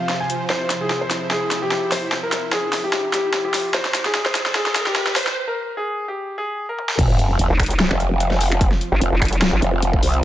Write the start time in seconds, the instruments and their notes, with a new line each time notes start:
Already playing: supersaw synth C3 F3 F4 C5, grand piano F5
0.09 snare
0.20 grand piano G#5
0.30 closed hi-hat
0.50 supersaw synth E4, grand piano C5, snare, riser
0.70 snare, closed hi-hat
0.81 grand piano G#4
0.91 snare
1.01 grand piano C5
1.11 snare, closed hi-hat
1.31 grand piano G#4, snare
1.51 snare, closed hi-hat
1.62 grand piano G4
1.72 snare
1.92 grand piano C5, snare, open hi-hat
2.12 snare
2.23 grand piano A#4
2.32 snare, closed hi-hat
2.53 grand piano G#4, snare
2.73 snare, open hi-hat
2.84 grand piano G4
2.93 snare
3.14 grand piano G4, snare, closed hi-hat
3.34 snare
3.45 grand piano G4
3.54 snare, open hi-hat
3.74 grand piano C5, snare
3.85 snare
3.95 snare, closed hi-hat
4.05 grand piano G#4, snare
4.15 snare
4.26 grand piano C5, snare
4.35 snare, closed hi-hat
4.46 snare
4.55 grand piano G#4, snare
4.66 snare
4.76 snare, closed hi-hat
4.87 grand piano G4, snare
4.96 snare
5.07 snare
5.16 grand piano C5, snare, open hi-hat
5.27 snare
5.47 grand piano A#4
5.77 grand piano G#4
6.08 grand piano G4
6.38 grand piano G#4
6.69 grand piano A#4
6.78 high tom
6.89 snare
6.99 wobble bass F1, supersaw synth F3 F4, kick, closed hi-hat, crash, sub drop
7.19 closed hi-hat
7.39 wobble bass F1, closed hi-hat
7.50 wobble bass F1
7.60 finger snap, kick, closed hi-hat
7.63 closed hi-hat
7.66 closed hi-hat
7.70 closed hi-hat
7.80 snare
7.91 wobble bass F1, finger snap
8.00 closed hi-hat
8.20 closed hi-hat
8.31 snare
8.41 open hi-hat
8.52 finger snap, closed hi-hat
8.61 kick, closed hi-hat
8.72 snare
8.81 closed hi-hat
8.92 wobble bass G1
9.01 wobble bass F1, closed hi-hat
9.12 wobble bass F1
9.22 finger snap, kick, closed hi-hat
9.25 closed hi-hat
9.28 closed hi-hat
9.33 closed hi-hat
9.42 snare
9.53 wobble bass G1
9.62 wobble bass F1, closed hi-hat
9.82 closed hi-hat
9.93 kick
10.03 wobble bass C2, open hi-hat
10.14 closed hi-hat